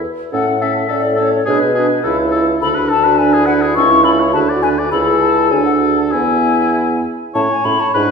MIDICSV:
0, 0, Header, 1, 6, 480
1, 0, Start_track
1, 0, Key_signature, 3, "major"
1, 0, Tempo, 574713
1, 275, Time_signature, 2, 2, 24, 8
1, 4113, Tempo, 605449
1, 6639, End_track
2, 0, Start_track
2, 0, Title_t, "Flute"
2, 0, Program_c, 0, 73
2, 278, Note_on_c, 0, 78, 81
2, 518, Note_on_c, 0, 76, 66
2, 530, Note_off_c, 0, 78, 0
2, 756, Note_on_c, 0, 74, 73
2, 769, Note_off_c, 0, 76, 0
2, 998, Note_on_c, 0, 73, 79
2, 1010, Note_off_c, 0, 74, 0
2, 1227, Note_off_c, 0, 73, 0
2, 1232, Note_on_c, 0, 71, 73
2, 1936, Note_off_c, 0, 71, 0
2, 2187, Note_on_c, 0, 83, 84
2, 2241, Note_off_c, 0, 83, 0
2, 2424, Note_on_c, 0, 81, 90
2, 2658, Note_on_c, 0, 80, 80
2, 2671, Note_off_c, 0, 81, 0
2, 2888, Note_off_c, 0, 80, 0
2, 2893, Note_on_c, 0, 78, 96
2, 2948, Note_off_c, 0, 78, 0
2, 3138, Note_on_c, 0, 85, 97
2, 3369, Note_off_c, 0, 85, 0
2, 3374, Note_on_c, 0, 83, 88
2, 3430, Note_off_c, 0, 83, 0
2, 3616, Note_on_c, 0, 81, 84
2, 3672, Note_off_c, 0, 81, 0
2, 3861, Note_on_c, 0, 80, 93
2, 3916, Note_off_c, 0, 80, 0
2, 4103, Note_on_c, 0, 83, 89
2, 4157, Note_off_c, 0, 83, 0
2, 4335, Note_on_c, 0, 81, 66
2, 4578, Note_on_c, 0, 80, 74
2, 4590, Note_off_c, 0, 81, 0
2, 4686, Note_off_c, 0, 80, 0
2, 4691, Note_on_c, 0, 78, 65
2, 4747, Note_off_c, 0, 78, 0
2, 4945, Note_on_c, 0, 81, 59
2, 4992, Note_off_c, 0, 81, 0
2, 5054, Note_on_c, 0, 80, 67
2, 5777, Note_off_c, 0, 80, 0
2, 6035, Note_on_c, 0, 81, 77
2, 6083, Note_off_c, 0, 81, 0
2, 6165, Note_on_c, 0, 80, 74
2, 6271, Note_on_c, 0, 83, 78
2, 6283, Note_off_c, 0, 80, 0
2, 6395, Note_on_c, 0, 81, 69
2, 6407, Note_off_c, 0, 83, 0
2, 6505, Note_off_c, 0, 81, 0
2, 6510, Note_on_c, 0, 83, 75
2, 6563, Note_off_c, 0, 83, 0
2, 6639, End_track
3, 0, Start_track
3, 0, Title_t, "Oboe"
3, 0, Program_c, 1, 68
3, 272, Note_on_c, 1, 69, 51
3, 380, Note_off_c, 1, 69, 0
3, 514, Note_on_c, 1, 69, 48
3, 622, Note_off_c, 1, 69, 0
3, 738, Note_on_c, 1, 69, 50
3, 849, Note_off_c, 1, 69, 0
3, 969, Note_on_c, 1, 69, 49
3, 1081, Note_off_c, 1, 69, 0
3, 1215, Note_on_c, 1, 68, 58
3, 1325, Note_off_c, 1, 68, 0
3, 1453, Note_on_c, 1, 68, 51
3, 1565, Note_off_c, 1, 68, 0
3, 1701, Note_on_c, 1, 69, 54
3, 1811, Note_off_c, 1, 69, 0
3, 1931, Note_on_c, 1, 69, 57
3, 2043, Note_off_c, 1, 69, 0
3, 2184, Note_on_c, 1, 69, 63
3, 2298, Note_on_c, 1, 71, 55
3, 2311, Note_off_c, 1, 69, 0
3, 2416, Note_on_c, 1, 69, 59
3, 2428, Note_off_c, 1, 71, 0
3, 2543, Note_on_c, 1, 71, 56
3, 2555, Note_off_c, 1, 69, 0
3, 2653, Note_off_c, 1, 71, 0
3, 2658, Note_on_c, 1, 71, 56
3, 2787, Note_on_c, 1, 68, 59
3, 2800, Note_off_c, 1, 71, 0
3, 2893, Note_on_c, 1, 71, 57
3, 2905, Note_off_c, 1, 68, 0
3, 3026, Note_on_c, 1, 68, 52
3, 3038, Note_off_c, 1, 71, 0
3, 3144, Note_off_c, 1, 68, 0
3, 3148, Note_on_c, 1, 69, 61
3, 3262, Note_on_c, 1, 73, 56
3, 3274, Note_off_c, 1, 69, 0
3, 3374, Note_on_c, 1, 69, 59
3, 3387, Note_off_c, 1, 73, 0
3, 3507, Note_on_c, 1, 73, 58
3, 3520, Note_off_c, 1, 69, 0
3, 3625, Note_off_c, 1, 73, 0
3, 3630, Note_on_c, 1, 71, 57
3, 3749, Note_on_c, 1, 74, 54
3, 3762, Note_off_c, 1, 71, 0
3, 3872, Note_on_c, 1, 71, 57
3, 3884, Note_off_c, 1, 74, 0
3, 3999, Note_on_c, 1, 74, 58
3, 4011, Note_off_c, 1, 71, 0
3, 4104, Note_off_c, 1, 74, 0
3, 4109, Note_on_c, 1, 69, 65
3, 4550, Note_off_c, 1, 69, 0
3, 4581, Note_on_c, 1, 69, 55
3, 5061, Note_on_c, 1, 64, 52
3, 5073, Note_off_c, 1, 69, 0
3, 5795, Note_off_c, 1, 64, 0
3, 6033, Note_on_c, 1, 73, 70
3, 6480, Note_off_c, 1, 73, 0
3, 6505, Note_on_c, 1, 71, 66
3, 6639, Note_off_c, 1, 71, 0
3, 6639, End_track
4, 0, Start_track
4, 0, Title_t, "French horn"
4, 0, Program_c, 2, 60
4, 33, Note_on_c, 2, 71, 58
4, 266, Note_off_c, 2, 71, 0
4, 271, Note_on_c, 2, 69, 58
4, 741, Note_off_c, 2, 69, 0
4, 753, Note_on_c, 2, 69, 62
4, 1220, Note_off_c, 2, 69, 0
4, 1233, Note_on_c, 2, 68, 62
4, 1339, Note_off_c, 2, 68, 0
4, 1465, Note_on_c, 2, 66, 62
4, 1701, Note_off_c, 2, 66, 0
4, 1706, Note_on_c, 2, 64, 68
4, 2179, Note_off_c, 2, 64, 0
4, 2186, Note_on_c, 2, 62, 76
4, 3138, Note_on_c, 2, 64, 72
4, 3151, Note_off_c, 2, 62, 0
4, 3620, Note_on_c, 2, 66, 69
4, 3632, Note_off_c, 2, 64, 0
4, 3939, Note_off_c, 2, 66, 0
4, 4108, Note_on_c, 2, 68, 75
4, 4550, Note_off_c, 2, 68, 0
4, 4585, Note_on_c, 2, 66, 60
4, 5057, Note_off_c, 2, 66, 0
4, 5062, Note_on_c, 2, 64, 49
4, 5781, Note_off_c, 2, 64, 0
4, 6035, Note_on_c, 2, 61, 57
4, 6143, Note_off_c, 2, 61, 0
4, 6273, Note_on_c, 2, 61, 52
4, 6380, Note_off_c, 2, 61, 0
4, 6511, Note_on_c, 2, 62, 51
4, 6617, Note_off_c, 2, 62, 0
4, 6639, End_track
5, 0, Start_track
5, 0, Title_t, "Clarinet"
5, 0, Program_c, 3, 71
5, 272, Note_on_c, 3, 61, 53
5, 381, Note_off_c, 3, 61, 0
5, 516, Note_on_c, 3, 61, 48
5, 623, Note_off_c, 3, 61, 0
5, 758, Note_on_c, 3, 61, 49
5, 865, Note_off_c, 3, 61, 0
5, 997, Note_on_c, 3, 61, 49
5, 1103, Note_off_c, 3, 61, 0
5, 1232, Note_on_c, 3, 62, 54
5, 1338, Note_off_c, 3, 62, 0
5, 1480, Note_on_c, 3, 62, 55
5, 1585, Note_off_c, 3, 62, 0
5, 1713, Note_on_c, 3, 64, 58
5, 1821, Note_off_c, 3, 64, 0
5, 1956, Note_on_c, 3, 64, 52
5, 2063, Note_off_c, 3, 64, 0
5, 2194, Note_on_c, 3, 62, 59
5, 2320, Note_on_c, 3, 66, 53
5, 2332, Note_off_c, 3, 62, 0
5, 2442, Note_on_c, 3, 62, 58
5, 2454, Note_off_c, 3, 66, 0
5, 2551, Note_on_c, 3, 66, 53
5, 2563, Note_off_c, 3, 62, 0
5, 2665, Note_off_c, 3, 66, 0
5, 2670, Note_on_c, 3, 62, 59
5, 2788, Note_on_c, 3, 64, 57
5, 2801, Note_off_c, 3, 62, 0
5, 2899, Note_on_c, 3, 62, 60
5, 2912, Note_off_c, 3, 64, 0
5, 3018, Note_on_c, 3, 64, 55
5, 3031, Note_off_c, 3, 62, 0
5, 3135, Note_off_c, 3, 64, 0
5, 3140, Note_on_c, 3, 61, 64
5, 3266, Note_on_c, 3, 64, 59
5, 3278, Note_off_c, 3, 61, 0
5, 3374, Note_on_c, 3, 61, 59
5, 3387, Note_off_c, 3, 64, 0
5, 3500, Note_on_c, 3, 64, 54
5, 3512, Note_off_c, 3, 61, 0
5, 3617, Note_off_c, 3, 64, 0
5, 3622, Note_on_c, 3, 62, 54
5, 3752, Note_on_c, 3, 66, 54
5, 3764, Note_off_c, 3, 62, 0
5, 3864, Note_on_c, 3, 62, 54
5, 3876, Note_off_c, 3, 66, 0
5, 3991, Note_on_c, 3, 66, 52
5, 4004, Note_off_c, 3, 62, 0
5, 4103, Note_off_c, 3, 66, 0
5, 4108, Note_on_c, 3, 64, 63
5, 4588, Note_on_c, 3, 62, 55
5, 4600, Note_off_c, 3, 64, 0
5, 5065, Note_off_c, 3, 62, 0
5, 5070, Note_on_c, 3, 59, 49
5, 5785, Note_off_c, 3, 59, 0
5, 6047, Note_on_c, 3, 64, 54
5, 6152, Note_off_c, 3, 64, 0
5, 6285, Note_on_c, 3, 64, 51
5, 6390, Note_off_c, 3, 64, 0
5, 6513, Note_on_c, 3, 64, 51
5, 6619, Note_off_c, 3, 64, 0
5, 6639, End_track
6, 0, Start_track
6, 0, Title_t, "Bassoon"
6, 0, Program_c, 4, 70
6, 276, Note_on_c, 4, 45, 57
6, 697, Note_off_c, 4, 45, 0
6, 755, Note_on_c, 4, 45, 59
6, 1175, Note_off_c, 4, 45, 0
6, 1232, Note_on_c, 4, 47, 65
6, 1652, Note_off_c, 4, 47, 0
6, 1708, Note_on_c, 4, 37, 69
6, 2133, Note_off_c, 4, 37, 0
6, 2191, Note_on_c, 4, 38, 66
6, 3141, Note_on_c, 4, 37, 69
6, 3153, Note_off_c, 4, 38, 0
6, 3629, Note_on_c, 4, 38, 68
6, 3642, Note_off_c, 4, 37, 0
6, 4108, Note_off_c, 4, 38, 0
6, 4113, Note_on_c, 4, 37, 65
6, 4583, Note_on_c, 4, 38, 60
6, 4595, Note_off_c, 4, 37, 0
6, 5064, Note_on_c, 4, 40, 50
6, 5076, Note_off_c, 4, 38, 0
6, 5797, Note_off_c, 4, 40, 0
6, 6035, Note_on_c, 4, 45, 58
6, 6143, Note_off_c, 4, 45, 0
6, 6275, Note_on_c, 4, 45, 56
6, 6382, Note_off_c, 4, 45, 0
6, 6514, Note_on_c, 4, 44, 60
6, 6620, Note_off_c, 4, 44, 0
6, 6639, End_track
0, 0, End_of_file